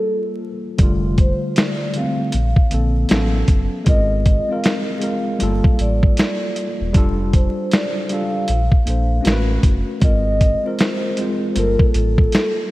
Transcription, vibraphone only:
0.00 0.24 A4 medium
1.20 1.57 C5 medium
1.59 1.92 D5 medium
1.97 3.31 F5 medium
3.89 4.46 D#5 medium
4.51 5.76 F5 medium
5.81 6.91 D5 medium
7.35 7.69 C5 medium
7.73 8.07 D5 medium
8.12 9.46 F5 medium
10.04 10.62 D#5 loud
10.66 11.56 C5 medium
11.58 11.78 A#4 medium
11.82 11.94 A4 medium
11.96 12.54 A4 medium

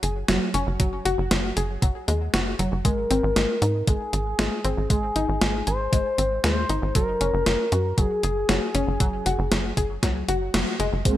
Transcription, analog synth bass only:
0.03 0.24 F#1 medium
0.29 0.39 F#1 medium
0.54 0.65 F#1 medium
0.67 0.78 F#1 medium
0.80 1.01 F#1 medium
1.06 1.16 F#1 medium
1.18 1.29 F#1 medium
1.31 1.52 F#1 loud
1.57 1.78 F#1 medium
1.82 1.93 F#1 medium
2.08 2.29 D#2 medium
2.34 2.55 F#1 medium
2.59 2.70 F#1 loud
2.72 2.83 F#1 medium
2.85 3.06 G#1 loud
3.11 3.21 G#1 loud
3.23 3.34 G#1 loud
3.36 3.47 G#1 loud
3.62 3.83 G#2 medium
3.87 3.98 G#1 loud
4.13 4.34 G#1 medium
4.39 4.49 G#1 medium
4.65 4.75 G#1 medium
4.77 4.88 G#1 medium
4.90 5.11 G#1 medium
5.16 5.26 G#1 medium
5.29 5.39 G#1 medium
5.42 5.63 G#1 loud
5.67 5.88 G#1 medium
5.93 6.03 G#1 loud
6.18 6.39 G#1 medium
6.44 6.65 D#2 loud
6.70 6.80 G#1 loud
6.82 6.93 G#1 medium
6.95 7.16 F#1 loud
7.21 7.31 F#1 loud
7.34 7.44 F#1 loud
7.46 7.57 F#1 loud
7.72 7.93 F#2 medium
7.98 8.08 F#1 loud
8.23 8.45 F#1 medium
8.49 8.60 F#1 medium
8.75 8.85 F#1 medium
8.87 8.98 F#1 medium
9.00 9.21 F#1 medium
9.26 9.37 F#1 medium
9.39 9.49 F#1 loud
9.52 9.73 F#1 loud
9.77 9.98 F#1 medium
10.03 10.24 C#2 medium
10.28 10.50 F#1 medium
10.54 10.65 F#1 medium
10.80 10.90 F#1 medium
10.93 11.03 F#1 medium
11.05 11.17 G#1 loud

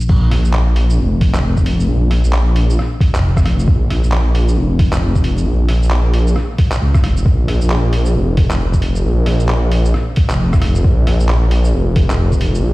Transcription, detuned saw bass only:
0.10 0.44 A#1 loud
0.45 0.98 A#1 medium
0.99 1.88 F1 medium
1.88 2.23 A#1 loud
2.25 2.77 A#1 medium
3.14 3.67 F1 medium
3.68 4.02 A#1 loud
4.04 4.56 A#1 medium
4.58 5.46 F1 medium
5.46 5.81 A#1 loud
5.82 6.35 A#1 medium
6.81 7.02 C#2 medium
7.03 7.24 F1 loud
7.26 7.60 A#1 loud
7.63 8.15 A#1 medium
8.15 9.04 F1 medium
9.05 9.39 A#1 loud
9.41 9.93 A#1 medium
10.31 10.83 F1 medium
10.84 11.18 A#1 loud
11.20 11.73 A#1 medium
11.73 12.62 F1 medium
12.63 12.73 A#1 loud

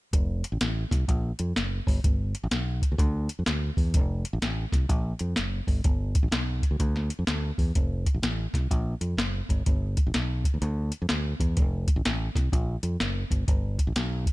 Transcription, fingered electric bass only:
0.13 0.42 F1 loud
0.52 0.58 A1 medium
0.61 0.83 A1 medium
0.91 1.04 C2 medium
1.08 1.31 A#1 loud
1.39 1.52 F2 medium
1.56 1.79 F#1 medium
1.87 1.99 G1 medium
2.05 2.33 G1 medium
2.44 2.49 A1 loud
2.51 2.80 B1 medium
2.92 2.97 D2 medium
2.98 3.27 D2 loud
3.39 3.45 F2 medium
3.47 3.69 D2 medium
3.77 3.96 E2 medium
3.94 4.23 F1 loud
4.33 4.39 A1 medium
4.42 4.64 A1 medium
4.73 4.85 C2 medium
4.89 5.12 A#1 loud
5.21 5.33 F2 medium
5.37 5.60 F#1 medium
5.67 5.80 G1 medium
5.84 6.13 G1 loud
6.23 6.29 A1 medium
6.31 6.60 B1 medium
6.71 6.77 D2 medium
6.80 7.09 D2 loud
7.19 7.25 F2 medium
7.28 7.50 D2 medium
7.58 7.71 E2 medium
7.75 8.04 F1 loud
8.14 8.21 A1 medium
8.22 8.45 A1 medium
8.54 8.66 C2 medium
8.71 8.93 A#1 loud
9.01 9.14 F2 medium
9.17 9.40 F#1 medium
9.49 9.62 G1 loud
9.67 9.95 G1 loud
10.07 10.12 A1 medium
10.15 10.43 B1 medium
10.54 10.60 D2 medium
10.62 10.90 D2 loud
11.02 11.08 F2 medium
11.10 11.32 D2 medium
11.40 11.58 E2 medium
11.57 11.86 F1 medium
11.96 12.02 A1 medium
12.05 12.27 A1 medium
12.35 12.48 C2 medium
12.53 12.75 A#1 loud
12.83 12.95 F2 medium
13.01 13.23 F#1 medium
13.31 13.43 G1 medium
13.48 13.77 G1 medium
13.87 13.93 A1 medium
13.96 14.24 B1 medium

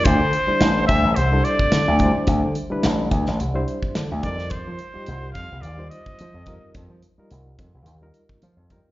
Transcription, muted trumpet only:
0.04 0.86 C5 medium
0.87 1.17 E5 medium
1.16 1.46 C5 medium
1.44 2.28 D5 medium
4.23 4.52 D5 medium
4.51 5.32 C5 medium
5.33 5.63 F5 loud
5.61 5.89 D5 medium
5.90 6.70 D#5 medium

